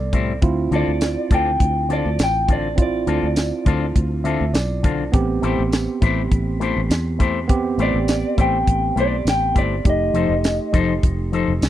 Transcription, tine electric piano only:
Already playing: B3 C4 A4 D5
0.42 C4 E4 F4
2.76 C4 E4 F4
4.24 E5
4.54 D5
5.12 B3 C4 G4
7.48 B3 C4 G4
9.85 A3 D#4 G4

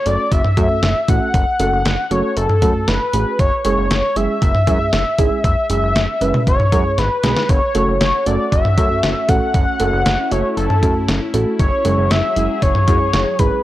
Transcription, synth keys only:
0.06 A3 C#4 F#4 A4
0.57 A3 C#4 F#4 A4
1.08 A3 C#4 F#4 A4
1.60 A3 C#4 F#4 A4
2.11 A3 C#4 F#4 A4
2.62 A3 C#4 F#4 A4
3.13 A3 C#4 F#4 G#4
3.65 G#3 C#4 E4 G#4
4.16 G#3 C#4 E4 G#4
4.67 G#3 C#4 E4 G#4
5.19 G#3 C#4 E4 G#4
5.70 G#3 C#4 E4 G#4
6.21 G#3 C#4 E4 B4
6.72 G#3 C#4 E4 G#4
7.24 G#3 C#4 E4 G#4
7.75 A3 C#4 F#4 A4
8.26 A3 C#4 F#4 A4
8.77 A3 C#4 F#4 A4
9.29 A3 C#4 F#4 A4
9.80 A3 C#4 F#4 A4
10.31 A3 C#4 F#4 A4
10.83 A3 C#4 F#4 A4
11.34 A3 C#4 F#4 A4
11.85 G#3 C#4 E4 G#4
12.37 G#3 C#4 E4 G#4
12.88 G#3 C#4 E4 G#4
13.39 G#3 C#4 E4 G#4

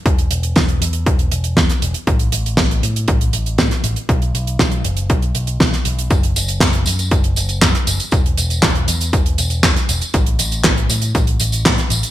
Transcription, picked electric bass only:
0.06 E1
0.31 E1
0.56 E1
0.81 E2
1.06 E1
1.32 E1
1.57 E2
1.82 E1
2.07 A1
2.33 A1
2.58 A1
2.83 A2
3.08 A1
3.33 A1
3.59 A2
3.84 A1
4.09 B1
4.34 B1
4.59 B1
4.85 F#1
5.10 B1
5.35 B1
5.60 B1
5.86 B1
6.11 F#1
6.36 F#1
6.61 F#1
6.86 F#2
7.11 F#1
7.37 F#1
7.62 F#2
7.87 F#1
8.12 E1
8.38 E1
8.63 E1
8.88 E2
9.13 E1
9.38 E1
9.64 E2
9.89 E1
10.14 A1
10.39 A1
10.64 A1
10.90 A2
11.15 A1
11.40 A1
11.65 A2
11.90 A1

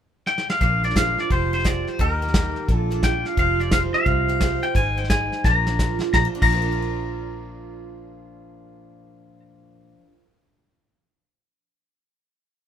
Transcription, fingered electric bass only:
0.61 A#1
1.30 F1
1.99 D#2
2.69 A#1
3.38 F1
4.06 C2
4.75 G#1
5.45 A#1
6.14 A#1
6.42 A#1

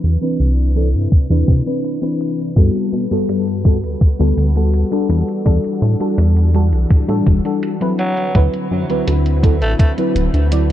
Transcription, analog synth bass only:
0.04 E2
0.40 C2
0.94 G2
1.12 E2
1.30 E2
1.48 C3
2.56 G2
2.93 B2
3.11 G2
3.29 G2
3.83 D2
4.20 D2
4.37 D2
5.09 E2
5.46 E2
5.82 A2
6.18 E2
6.73 B1
6.90 A2
7.09 A2
7.26 E1
8.35 D2
8.71 F#2
8.90 D2
9.07 D2
9.62 A1
10.16 D1
10.34 D2

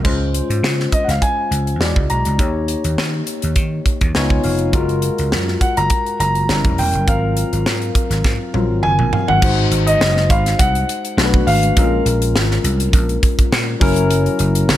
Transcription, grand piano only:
0.93 D#5
1.04 F#5
1.09 F5
1.22 G#5
2.10 A#5
5.61 F#5
5.77 A#5
6.20 A#5
6.79 G5
7.08 F5
8.83 G#5
9.28 F#5
9.87 D#5
10.30 F5
10.59 F#5
11.47 F5

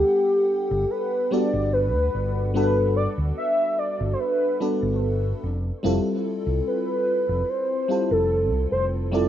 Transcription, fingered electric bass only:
0.71 G1
1.53 G1
1.95 D2
2.14 G1
3.18 D2
4.00 G1
4.82 G1
5.43 F1
5.84 F1
6.47 C2
7.29 F1
8.11 F1
8.52 C2
8.72 F1

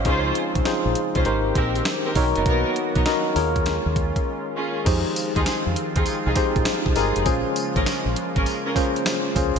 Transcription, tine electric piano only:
Already playing: C#5
0.05 D#4 F4 G#4 C5
0.65 D#4 F4 G#4 C5
1.25 D#4 G4 A#4 C5
2.16 D#4 F#4 A#4 C#5
3.05 D#4 F#4 A#4 D#5
3.36 F4 G#4 A#4 C#5
4.85 D#4 G4 G#4 C5
6.35 D#4 G4 G#4 C5
6.96 D#4 G4 G#4 A#4
7.25 C#4 F4 G#4 C5
8.75 C#4 F4 G#4 C5
9.35 C#4 F4 G#4 C5

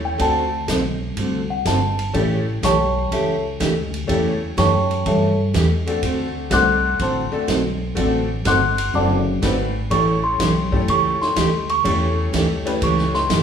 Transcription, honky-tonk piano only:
Already playing: A3 C#4 E4 G4 A4
0.18 A3 C4 D4 F#4 A4
2.13 A3 C#4 E4 G4 A4
4.07 A3 C#4 E4 G4 A4
5.87 A3 C4 D4 F#4 A4
6.50 A3 C4 D4 F#4 A4
7.32 A3 C4 D4 F#4 A4
7.95 A3 C4 D4 F#4 A4
9.42 A3 C4 D4 F#4 B4
9.90 A3 C#4 E4 G4 A4
10.72 A3 C#4 E4 G4 A4
11.84 A3 C#4 E4 G4 A4
12.65 A3 C#4 E4 G4 B4

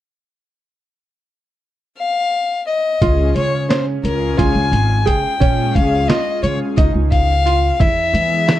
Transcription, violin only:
1.98 F5
2.67 D#5
3.37 C#5
3.69 C5
4.04 A#4
4.37 G#5
5.07 G5
5.75 F5
6.08 D#5
6.43 C#5
6.76 D#5
7.12 F5
7.81 E5

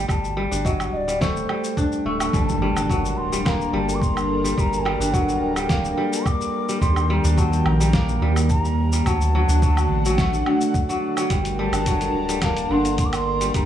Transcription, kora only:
Already playing: F#3 A3
0.08 G3
0.37 G3
0.51 D4
0.65 F#3
1.08 G3
1.21 A3
1.49 G3
1.77 D4
2.06 A3
2.21 A3
2.34 G3
2.62 G3
2.76 D4
2.90 F#3
3.32 G3
3.45 A#3
3.73 G3
4.44 G3
4.58 G3
4.85 G3
5.00 D4
5.14 F#3
5.56 G3
5.70 A#3
5.97 G3
6.69 G3
6.82 G3
7.10 G3
7.25 D4
7.38 F#3
7.80 G3
7.94 A#3
8.22 G3
8.93 G3
9.06 F#3
9.35 F#3
9.49 D4
9.63 F#3
10.06 F#3
10.19 A3
10.47 D3
10.89 F#3
11.17 F#3
11.31 G3
11.59 G3
11.73 D4
11.87 F#3
12.29 G3
12.43 A#3
12.71 D3
13.41 G3
13.55 G3

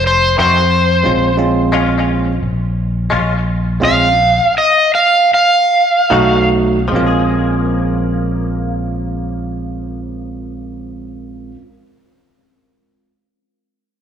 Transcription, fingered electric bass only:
Already playing: F1
0.39 F2
1.07 A#1
2.42 A#1
3.12 A#1
3.83 A#1
6.11 B1
6.93 A#1

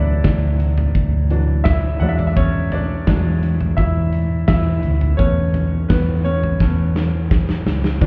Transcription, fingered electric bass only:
Already playing: D2
0.25 D2
0.95 D2
2.01 E2
3.08 E2
3.78 E2
4.48 E2
4.84 D2
5.19 E2
5.90 E2
6.60 E2
7.66 C#2
8.02 D2

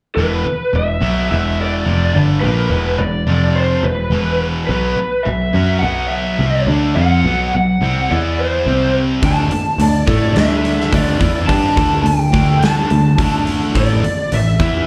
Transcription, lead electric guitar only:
0.16 B4
0.76 E5
1.32 E5
1.61 D5
2.41 B4
2.98 D5
3.55 C5
3.84 B4
4.67 B4
5.23 E5
5.79 F#5
6.08 E5
6.96 F#5
7.54 F#5
8.11 D5
8.40 C5
9.26 A5
9.82 D5
10.35 E5
10.94 D5
11.47 A5
12.03 G5
12.59 A5
13.77 D5
14.34 E5

